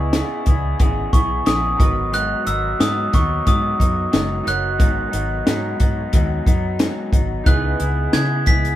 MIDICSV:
0, 0, Header, 1, 6, 480
1, 0, Start_track
1, 0, Key_signature, 5, "minor"
1, 0, Tempo, 666667
1, 1535, Time_signature, 4, 2, 24, 8
1, 6304, End_track
2, 0, Start_track
2, 0, Title_t, "Glockenspiel"
2, 0, Program_c, 0, 9
2, 814, Note_on_c, 0, 85, 74
2, 1057, Note_on_c, 0, 87, 85
2, 1062, Note_off_c, 0, 85, 0
2, 1508, Note_off_c, 0, 87, 0
2, 1540, Note_on_c, 0, 90, 97
2, 1777, Note_on_c, 0, 88, 83
2, 1785, Note_off_c, 0, 90, 0
2, 1885, Note_off_c, 0, 88, 0
2, 2021, Note_on_c, 0, 87, 77
2, 2264, Note_on_c, 0, 85, 68
2, 2265, Note_off_c, 0, 87, 0
2, 2502, Note_on_c, 0, 87, 78
2, 2507, Note_off_c, 0, 85, 0
2, 3224, Note_on_c, 0, 90, 84
2, 3241, Note_off_c, 0, 87, 0
2, 3911, Note_off_c, 0, 90, 0
2, 5374, Note_on_c, 0, 90, 81
2, 5856, Note_on_c, 0, 92, 87
2, 5869, Note_off_c, 0, 90, 0
2, 6079, Note_off_c, 0, 92, 0
2, 6100, Note_on_c, 0, 95, 96
2, 6304, Note_off_c, 0, 95, 0
2, 6304, End_track
3, 0, Start_track
3, 0, Title_t, "Synth keys"
3, 0, Program_c, 1, 88
3, 0, Control_c, 1, 64, 127
3, 0, Note_on_c, 1, 64, 56
3, 0, Note_on_c, 1, 68, 53
3, 0, Note_on_c, 1, 71, 50
3, 0, Note_on_c, 1, 74, 48
3, 0, Note_on_c, 1, 75, 62
3, 1256, Note_off_c, 1, 64, 0
3, 1262, Note_off_c, 1, 68, 0
3, 1268, Note_off_c, 1, 71, 0
3, 1275, Note_on_c, 1, 63, 58
3, 1286, Note_on_c, 1, 66, 54
3, 1297, Note_on_c, 1, 70, 49
3, 1298, Note_off_c, 1, 75, 0
3, 1304, Control_c, 1, 64, 0
3, 1307, Note_off_c, 1, 74, 0
3, 1309, Note_on_c, 1, 71, 63
3, 1440, Control_c, 1, 64, 127
3, 3177, Note_off_c, 1, 63, 0
3, 3182, Note_off_c, 1, 66, 0
3, 3188, Note_off_c, 1, 70, 0
3, 3193, Note_on_c, 1, 63, 52
3, 3194, Note_off_c, 1, 71, 0
3, 3205, Note_on_c, 1, 66, 52
3, 3218, Note_on_c, 1, 70, 49
3, 3229, Note_on_c, 1, 73, 59
3, 5095, Note_off_c, 1, 63, 0
3, 5101, Note_off_c, 1, 66, 0
3, 5108, Note_off_c, 1, 70, 0
3, 5113, Note_off_c, 1, 73, 0
3, 5355, Note_on_c, 1, 63, 58
3, 5368, Note_on_c, 1, 64, 49
3, 5380, Note_on_c, 1, 68, 52
3, 5386, Control_c, 1, 64, 0
3, 5391, Note_on_c, 1, 71, 62
3, 5533, Control_c, 1, 64, 127
3, 6304, Note_off_c, 1, 63, 0
3, 6304, Note_off_c, 1, 64, 0
3, 6304, Note_off_c, 1, 68, 0
3, 6304, Note_off_c, 1, 71, 0
3, 6304, End_track
4, 0, Start_track
4, 0, Title_t, "Clean electric guitar"
4, 0, Program_c, 2, 27
4, 0, Note_on_c, 2, 59, 38
4, 0, Note_on_c, 2, 64, 48
4, 0, Note_on_c, 2, 68, 49
4, 92, Note_off_c, 2, 59, 0
4, 94, Note_off_c, 2, 68, 0
4, 94, Note_on_c, 2, 49, 84
4, 98, Note_off_c, 2, 64, 0
4, 100, Note_on_c, 2, 59, 82
4, 107, Note_on_c, 2, 64, 91
4, 110, Note_on_c, 2, 68, 94
4, 320, Note_off_c, 2, 68, 0
4, 328, Note_on_c, 2, 68, 53
4, 334, Note_off_c, 2, 49, 0
4, 335, Note_off_c, 2, 64, 0
4, 338, Note_off_c, 2, 59, 0
4, 344, Note_on_c, 2, 64, 50
4, 352, Note_on_c, 2, 59, 42
4, 569, Note_off_c, 2, 59, 0
4, 570, Note_on_c, 2, 49, 67
4, 572, Note_off_c, 2, 68, 0
4, 578, Note_off_c, 2, 64, 0
4, 578, Note_on_c, 2, 59, 67
4, 586, Note_on_c, 2, 64, 64
4, 595, Note_on_c, 2, 68, 77
4, 801, Note_off_c, 2, 68, 0
4, 810, Note_on_c, 2, 68, 55
4, 812, Note_off_c, 2, 49, 0
4, 813, Note_off_c, 2, 64, 0
4, 816, Note_off_c, 2, 59, 0
4, 822, Note_on_c, 2, 64, 48
4, 831, Note_on_c, 2, 59, 41
4, 1044, Note_off_c, 2, 59, 0
4, 1049, Note_on_c, 2, 49, 72
4, 1050, Note_off_c, 2, 64, 0
4, 1052, Note_off_c, 2, 68, 0
4, 1053, Note_on_c, 2, 59, 67
4, 1059, Note_on_c, 2, 64, 71
4, 1065, Note_on_c, 2, 68, 83
4, 1283, Note_off_c, 2, 64, 0
4, 1286, Note_on_c, 2, 63, 45
4, 1291, Note_off_c, 2, 59, 0
4, 1292, Note_off_c, 2, 49, 0
4, 1300, Note_off_c, 2, 68, 0
4, 1300, Note_on_c, 2, 59, 45
4, 1309, Note_on_c, 2, 54, 39
4, 1526, Note_off_c, 2, 54, 0
4, 1528, Note_on_c, 2, 44, 74
4, 1531, Note_off_c, 2, 63, 0
4, 1532, Note_off_c, 2, 59, 0
4, 1534, Note_on_c, 2, 54, 66
4, 1541, Note_on_c, 2, 59, 76
4, 1544, Note_on_c, 2, 63, 79
4, 1755, Note_off_c, 2, 63, 0
4, 1764, Note_on_c, 2, 63, 45
4, 1766, Note_off_c, 2, 59, 0
4, 1772, Note_off_c, 2, 44, 0
4, 1775, Note_off_c, 2, 54, 0
4, 1775, Note_on_c, 2, 59, 42
4, 1788, Note_on_c, 2, 54, 39
4, 2003, Note_off_c, 2, 54, 0
4, 2004, Note_on_c, 2, 44, 71
4, 2007, Note_off_c, 2, 59, 0
4, 2010, Note_off_c, 2, 63, 0
4, 2012, Note_on_c, 2, 54, 76
4, 2016, Note_on_c, 2, 59, 81
4, 2019, Note_on_c, 2, 63, 84
4, 2236, Note_off_c, 2, 63, 0
4, 2245, Note_on_c, 2, 63, 50
4, 2249, Note_off_c, 2, 59, 0
4, 2250, Note_off_c, 2, 44, 0
4, 2254, Note_off_c, 2, 54, 0
4, 2258, Note_on_c, 2, 59, 43
4, 2268, Note_on_c, 2, 54, 41
4, 2484, Note_on_c, 2, 44, 60
4, 2485, Note_off_c, 2, 54, 0
4, 2490, Note_off_c, 2, 63, 0
4, 2492, Note_off_c, 2, 59, 0
4, 2494, Note_on_c, 2, 54, 61
4, 2500, Note_on_c, 2, 59, 66
4, 2506, Note_on_c, 2, 63, 65
4, 2719, Note_off_c, 2, 63, 0
4, 2727, Note_on_c, 2, 63, 51
4, 2730, Note_off_c, 2, 44, 0
4, 2731, Note_off_c, 2, 59, 0
4, 2735, Note_off_c, 2, 54, 0
4, 2740, Note_on_c, 2, 59, 51
4, 2750, Note_on_c, 2, 54, 44
4, 2962, Note_off_c, 2, 54, 0
4, 2964, Note_on_c, 2, 44, 80
4, 2966, Note_off_c, 2, 59, 0
4, 2971, Note_on_c, 2, 54, 79
4, 2972, Note_off_c, 2, 63, 0
4, 2974, Note_on_c, 2, 59, 74
4, 2980, Note_on_c, 2, 63, 75
4, 3197, Note_off_c, 2, 63, 0
4, 3206, Note_on_c, 2, 63, 50
4, 3210, Note_off_c, 2, 44, 0
4, 3212, Note_off_c, 2, 59, 0
4, 3213, Note_off_c, 2, 54, 0
4, 3220, Note_on_c, 2, 59, 42
4, 3230, Note_on_c, 2, 54, 38
4, 3440, Note_off_c, 2, 54, 0
4, 3444, Note_on_c, 2, 44, 66
4, 3447, Note_off_c, 2, 59, 0
4, 3448, Note_on_c, 2, 54, 69
4, 3451, Note_off_c, 2, 63, 0
4, 3455, Note_on_c, 2, 59, 73
4, 3459, Note_on_c, 2, 63, 72
4, 3673, Note_off_c, 2, 63, 0
4, 3682, Note_on_c, 2, 63, 49
4, 3685, Note_off_c, 2, 59, 0
4, 3690, Note_off_c, 2, 44, 0
4, 3692, Note_off_c, 2, 54, 0
4, 3694, Note_on_c, 2, 59, 45
4, 3705, Note_on_c, 2, 54, 38
4, 3926, Note_off_c, 2, 54, 0
4, 3927, Note_on_c, 2, 44, 81
4, 3929, Note_off_c, 2, 63, 0
4, 3933, Note_off_c, 2, 59, 0
4, 3935, Note_on_c, 2, 54, 89
4, 3941, Note_on_c, 2, 59, 83
4, 3945, Note_on_c, 2, 63, 88
4, 4163, Note_off_c, 2, 63, 0
4, 4172, Note_off_c, 2, 44, 0
4, 4172, Note_on_c, 2, 63, 55
4, 4175, Note_off_c, 2, 54, 0
4, 4177, Note_off_c, 2, 59, 0
4, 4186, Note_on_c, 2, 59, 51
4, 4195, Note_on_c, 2, 54, 41
4, 4406, Note_off_c, 2, 54, 0
4, 4406, Note_on_c, 2, 44, 60
4, 4414, Note_off_c, 2, 63, 0
4, 4415, Note_off_c, 2, 59, 0
4, 4415, Note_on_c, 2, 54, 66
4, 4424, Note_on_c, 2, 59, 63
4, 4429, Note_on_c, 2, 63, 71
4, 4642, Note_off_c, 2, 63, 0
4, 4650, Note_on_c, 2, 63, 54
4, 4651, Note_off_c, 2, 44, 0
4, 4653, Note_off_c, 2, 59, 0
4, 4655, Note_off_c, 2, 54, 0
4, 4661, Note_on_c, 2, 59, 55
4, 4671, Note_on_c, 2, 54, 43
4, 4891, Note_off_c, 2, 54, 0
4, 4893, Note_off_c, 2, 63, 0
4, 4894, Note_on_c, 2, 44, 87
4, 4896, Note_off_c, 2, 59, 0
4, 4900, Note_on_c, 2, 54, 91
4, 4904, Note_on_c, 2, 59, 78
4, 4910, Note_on_c, 2, 63, 81
4, 5121, Note_off_c, 2, 63, 0
4, 5130, Note_on_c, 2, 63, 47
4, 5134, Note_off_c, 2, 59, 0
4, 5135, Note_off_c, 2, 44, 0
4, 5138, Note_off_c, 2, 54, 0
4, 5143, Note_on_c, 2, 59, 44
4, 5153, Note_on_c, 2, 54, 40
4, 5370, Note_off_c, 2, 59, 0
4, 5370, Note_on_c, 2, 49, 67
4, 5372, Note_off_c, 2, 63, 0
4, 5378, Note_on_c, 2, 59, 77
4, 5382, Note_on_c, 2, 64, 68
4, 5384, Note_off_c, 2, 54, 0
4, 5389, Note_on_c, 2, 68, 75
4, 5598, Note_off_c, 2, 68, 0
4, 5607, Note_on_c, 2, 68, 45
4, 5610, Note_off_c, 2, 64, 0
4, 5613, Note_off_c, 2, 49, 0
4, 5617, Note_off_c, 2, 59, 0
4, 5619, Note_on_c, 2, 64, 41
4, 5630, Note_on_c, 2, 59, 40
4, 5849, Note_off_c, 2, 59, 0
4, 5851, Note_off_c, 2, 68, 0
4, 5853, Note_on_c, 2, 49, 74
4, 5855, Note_off_c, 2, 64, 0
4, 5858, Note_on_c, 2, 59, 76
4, 5863, Note_on_c, 2, 64, 77
4, 5869, Note_on_c, 2, 68, 77
4, 6086, Note_off_c, 2, 68, 0
4, 6094, Note_off_c, 2, 49, 0
4, 6094, Note_on_c, 2, 68, 51
4, 6096, Note_off_c, 2, 59, 0
4, 6098, Note_off_c, 2, 64, 0
4, 6106, Note_on_c, 2, 64, 41
4, 6115, Note_on_c, 2, 59, 40
4, 6304, Note_off_c, 2, 59, 0
4, 6304, Note_off_c, 2, 64, 0
4, 6304, Note_off_c, 2, 68, 0
4, 6304, End_track
5, 0, Start_track
5, 0, Title_t, "Fingered electric bass"
5, 0, Program_c, 3, 33
5, 0, Note_on_c, 3, 37, 87
5, 152, Note_off_c, 3, 37, 0
5, 338, Note_on_c, 3, 37, 92
5, 529, Note_off_c, 3, 37, 0
5, 578, Note_on_c, 3, 32, 83
5, 769, Note_off_c, 3, 32, 0
5, 816, Note_on_c, 3, 35, 77
5, 1008, Note_off_c, 3, 35, 0
5, 1058, Note_on_c, 3, 34, 88
5, 1249, Note_off_c, 3, 34, 0
5, 1295, Note_on_c, 3, 32, 85
5, 1679, Note_off_c, 3, 32, 0
5, 1776, Note_on_c, 3, 32, 86
5, 1968, Note_off_c, 3, 32, 0
5, 2018, Note_on_c, 3, 44, 92
5, 2209, Note_off_c, 3, 44, 0
5, 2260, Note_on_c, 3, 39, 79
5, 2450, Note_off_c, 3, 39, 0
5, 2499, Note_on_c, 3, 44, 84
5, 2690, Note_off_c, 3, 44, 0
5, 2736, Note_on_c, 3, 42, 70
5, 2928, Note_off_c, 3, 42, 0
5, 2977, Note_on_c, 3, 30, 84
5, 3169, Note_off_c, 3, 30, 0
5, 3217, Note_on_c, 3, 30, 67
5, 3456, Note_off_c, 3, 30, 0
5, 3456, Note_on_c, 3, 32, 86
5, 3648, Note_off_c, 3, 32, 0
5, 3698, Note_on_c, 3, 32, 90
5, 3889, Note_off_c, 3, 32, 0
5, 3941, Note_on_c, 3, 44, 81
5, 4131, Note_off_c, 3, 44, 0
5, 4180, Note_on_c, 3, 44, 80
5, 4370, Note_off_c, 3, 44, 0
5, 4419, Note_on_c, 3, 39, 75
5, 4609, Note_off_c, 3, 39, 0
5, 4657, Note_on_c, 3, 42, 79
5, 4954, Note_off_c, 3, 42, 0
5, 5132, Note_on_c, 3, 32, 76
5, 5325, Note_off_c, 3, 32, 0
5, 5374, Note_on_c, 3, 37, 97
5, 5567, Note_off_c, 3, 37, 0
5, 5618, Note_on_c, 3, 37, 86
5, 5809, Note_off_c, 3, 37, 0
5, 5860, Note_on_c, 3, 49, 80
5, 6100, Note_on_c, 3, 37, 76
5, 6111, Note_off_c, 3, 49, 0
5, 6290, Note_off_c, 3, 37, 0
5, 6304, End_track
6, 0, Start_track
6, 0, Title_t, "Drums"
6, 93, Note_on_c, 9, 38, 97
6, 94, Note_on_c, 9, 42, 87
6, 165, Note_off_c, 9, 38, 0
6, 166, Note_off_c, 9, 42, 0
6, 331, Note_on_c, 9, 42, 69
6, 337, Note_on_c, 9, 36, 76
6, 403, Note_off_c, 9, 42, 0
6, 409, Note_off_c, 9, 36, 0
6, 573, Note_on_c, 9, 42, 73
6, 576, Note_on_c, 9, 36, 87
6, 645, Note_off_c, 9, 42, 0
6, 648, Note_off_c, 9, 36, 0
6, 814, Note_on_c, 9, 36, 87
6, 820, Note_on_c, 9, 42, 58
6, 886, Note_off_c, 9, 36, 0
6, 892, Note_off_c, 9, 42, 0
6, 1053, Note_on_c, 9, 42, 74
6, 1057, Note_on_c, 9, 38, 95
6, 1125, Note_off_c, 9, 42, 0
6, 1129, Note_off_c, 9, 38, 0
6, 1294, Note_on_c, 9, 36, 95
6, 1298, Note_on_c, 9, 42, 70
6, 1366, Note_off_c, 9, 36, 0
6, 1370, Note_off_c, 9, 42, 0
6, 1537, Note_on_c, 9, 42, 75
6, 1609, Note_off_c, 9, 42, 0
6, 1775, Note_on_c, 9, 42, 61
6, 1847, Note_off_c, 9, 42, 0
6, 2018, Note_on_c, 9, 38, 96
6, 2020, Note_on_c, 9, 42, 82
6, 2090, Note_off_c, 9, 38, 0
6, 2092, Note_off_c, 9, 42, 0
6, 2256, Note_on_c, 9, 42, 74
6, 2259, Note_on_c, 9, 36, 79
6, 2259, Note_on_c, 9, 38, 32
6, 2328, Note_off_c, 9, 42, 0
6, 2331, Note_off_c, 9, 36, 0
6, 2331, Note_off_c, 9, 38, 0
6, 2496, Note_on_c, 9, 42, 75
6, 2498, Note_on_c, 9, 36, 80
6, 2568, Note_off_c, 9, 42, 0
6, 2570, Note_off_c, 9, 36, 0
6, 2736, Note_on_c, 9, 36, 79
6, 2743, Note_on_c, 9, 42, 59
6, 2808, Note_off_c, 9, 36, 0
6, 2815, Note_off_c, 9, 42, 0
6, 2973, Note_on_c, 9, 42, 75
6, 2977, Note_on_c, 9, 38, 97
6, 3045, Note_off_c, 9, 42, 0
6, 3049, Note_off_c, 9, 38, 0
6, 3219, Note_on_c, 9, 42, 71
6, 3291, Note_off_c, 9, 42, 0
6, 3454, Note_on_c, 9, 36, 98
6, 3454, Note_on_c, 9, 42, 72
6, 3526, Note_off_c, 9, 36, 0
6, 3526, Note_off_c, 9, 42, 0
6, 3695, Note_on_c, 9, 42, 64
6, 3767, Note_off_c, 9, 42, 0
6, 3936, Note_on_c, 9, 38, 101
6, 3937, Note_on_c, 9, 42, 82
6, 4008, Note_off_c, 9, 38, 0
6, 4009, Note_off_c, 9, 42, 0
6, 4174, Note_on_c, 9, 42, 75
6, 4179, Note_on_c, 9, 36, 79
6, 4246, Note_off_c, 9, 42, 0
6, 4251, Note_off_c, 9, 36, 0
6, 4413, Note_on_c, 9, 42, 83
6, 4417, Note_on_c, 9, 36, 86
6, 4485, Note_off_c, 9, 42, 0
6, 4489, Note_off_c, 9, 36, 0
6, 4655, Note_on_c, 9, 36, 85
6, 4661, Note_on_c, 9, 42, 58
6, 4727, Note_off_c, 9, 36, 0
6, 4733, Note_off_c, 9, 42, 0
6, 4891, Note_on_c, 9, 42, 75
6, 4895, Note_on_c, 9, 38, 106
6, 4963, Note_off_c, 9, 42, 0
6, 4967, Note_off_c, 9, 38, 0
6, 5131, Note_on_c, 9, 36, 86
6, 5136, Note_on_c, 9, 42, 65
6, 5203, Note_off_c, 9, 36, 0
6, 5208, Note_off_c, 9, 42, 0
6, 5373, Note_on_c, 9, 36, 102
6, 5373, Note_on_c, 9, 42, 73
6, 5445, Note_off_c, 9, 36, 0
6, 5445, Note_off_c, 9, 42, 0
6, 5614, Note_on_c, 9, 42, 63
6, 5686, Note_off_c, 9, 42, 0
6, 5854, Note_on_c, 9, 38, 104
6, 5855, Note_on_c, 9, 42, 85
6, 5926, Note_off_c, 9, 38, 0
6, 5927, Note_off_c, 9, 42, 0
6, 6093, Note_on_c, 9, 42, 73
6, 6096, Note_on_c, 9, 38, 30
6, 6098, Note_on_c, 9, 36, 74
6, 6165, Note_off_c, 9, 42, 0
6, 6168, Note_off_c, 9, 38, 0
6, 6170, Note_off_c, 9, 36, 0
6, 6227, Note_on_c, 9, 42, 49
6, 6299, Note_off_c, 9, 42, 0
6, 6304, End_track
0, 0, End_of_file